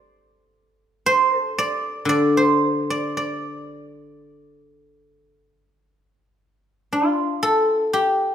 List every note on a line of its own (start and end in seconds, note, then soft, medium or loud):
0.00 0.49 A4 medium
0.00 0.76 C5 medium
0.00 0.88 D5 medium
1.06 1.37 C5 medium
1.37 2.37 A4 medium
1.58 2.09 D5 medium
2.05 5.32 D3 soft
2.05 2.90 D5 medium
2.37 4.35 C5 medium
2.90 3.17 D5 medium
3.17 5.02 D5 medium
6.93 8.35 F4 medium
7.43 8.35 A4 medium
7.93 8.35 G4 medium